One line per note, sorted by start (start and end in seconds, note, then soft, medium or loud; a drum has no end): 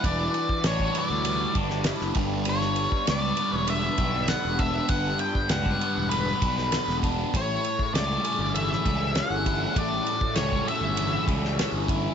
0.00 1.25 G3 medium
0.00 7.28 G3 medium
0.00 0.64 D4 medium
0.00 2.11 D4 medium
0.00 0.94 E4 medium
0.00 2.14 F#4 medium
0.00 3.24 B4 medium
0.00 7.29 B4 medium
0.00 kick medium
0.04 0.27 E1 medium
0.04 1.56 E3 medium
0.04 0.61 D5 medium
0.04 ride medium
0.34 ride soft
0.49 kick medium
0.64 0.88 A1 medium
0.64 1.55 D4 medium
0.64 0.97 C#5 medium
0.64 snare loud
0.64 ride medium
0.80 kick medium
0.95 1.84 E4 medium
0.95 ride medium
0.99 1.54 D5 medium
1.10 1.45 D2 medium
1.25 3.07 G3 medium
1.25 ride medium
1.55 1.90 G1 medium
1.55 3.37 D4 medium
1.55 kick medium
1.55 ride medium
1.70 snare soft
1.84 2.16 E4 medium
1.84 snare loud
1.84 ride medium
2.00 2.13 F#1 medium
2.00 snare soft
2.15 2.86 G1 medium
2.15 2.47 G2 medium
2.15 7.30 B3 medium
2.15 7.30 D4 medium
2.15 kick loud
2.15 ride medium
2.45 3.99 G2 medium
2.45 ride medium
2.49 3.05 C#5 medium
2.61 snare soft
2.76 ride medium
2.92 kick medium
3.07 3.31 C#2 medium
3.07 3.99 G3 medium
3.07 3.54 D5 medium
3.07 snare loud
3.07 ride medium
3.37 4.27 B3 medium
3.37 ride medium
3.53 3.88 E1 medium
3.53 3.69 C#5 medium
3.67 5.21 D3 medium
3.67 4.32 E5 medium
3.67 ride medium
3.98 4.33 B1 medium
3.98 5.50 G3 medium
3.98 kick medium
3.98 ride medium
4.28 5.80 B3 medium
4.28 4.60 F#5 medium
4.28 snare loud
4.28 ride medium
4.45 4.80 E1 medium
4.59 6.12 D4 medium
4.59 4.88 E5 medium
4.59 kick medium
4.59 ride medium
4.88 5.13 G1 medium
4.88 6.42 G2 medium
4.88 5.18 F#5 medium
4.88 kick loud
4.88 ride medium
5.19 5.50 G5 medium
5.19 ride soft
5.35 kick medium
5.49 5.74 C#2 medium
5.49 6.42 G3 medium
5.49 6.08 F#5 medium
5.49 snare loud
5.49 ride medium
5.66 kick medium
5.81 6.72 B3 medium
5.81 ride medium
5.97 6.32 E1 medium
6.09 7.33 D3 medium
6.09 6.98 B4 medium
6.09 ride medium
6.42 6.77 B1 medium
6.42 7.37 G3 medium
6.42 kick medium
6.42 ride medium
6.58 snare soft
6.72 7.34 B3 medium
6.72 snare loud
6.72 ride medium
6.88 7.23 E1 medium
6.88 snare soft
7.03 7.34 D4 medium
7.03 kick medium
7.03 ride medium
7.32 7.57 A1 medium
7.32 8.86 A2 medium
7.32 12.14 C#3 medium
7.32 12.14 G3 medium
7.32 9.74 E4 medium
7.32 12.14 A4 medium
7.32 kick loud
7.32 ride medium
7.37 7.94 C#5 medium
7.65 ride medium
7.79 kick medium
7.94 8.17 C#2 medium
7.94 8.85 G3 medium
7.94 8.51 D5 medium
7.94 snare loud
7.94 ride medium
8.24 9.14 C#4 medium
8.24 ride medium
8.39 8.74 G1 medium
8.55 10.07 E3 medium
8.55 9.17 E5 medium
8.55 ride medium
8.72 snare soft
8.85 9.20 C#2 medium
8.85 10.37 G3 medium
8.85 kick medium
8.85 ride medium
9.15 10.65 C#4 medium
9.15 9.78 F#5 medium
9.15 snare loud
9.15 ride medium
9.30 9.65 G1 medium
9.46 10.98 E4 medium
9.46 kick medium
9.46 ride medium
9.75 9.99 A1 medium
9.75 11.27 A2 medium
9.75 12.14 F#4 medium
9.75 10.36 D5 medium
9.75 kick loud
9.75 ride medium
10.07 ride medium
10.21 kick medium
10.35 10.60 C#2 medium
10.35 11.28 G3 medium
10.35 10.68 C#5 medium
10.35 snare loud
10.35 ride medium
10.52 kick medium
10.67 11.58 C#4 medium
10.67 11.25 E5 medium
10.67 ride medium
10.81 11.16 G1 medium
10.97 12.14 E3 medium
10.97 ride medium
11.28 11.63 C#2 medium
11.28 12.14 G3 medium
11.28 kick medium
11.28 ride medium
11.45 snare soft
11.59 12.14 C#4 medium
11.59 snare loud
11.59 ride medium
11.72 12.07 G1 medium
11.88 12.14 E4 medium
11.88 kick medium
11.88 ride medium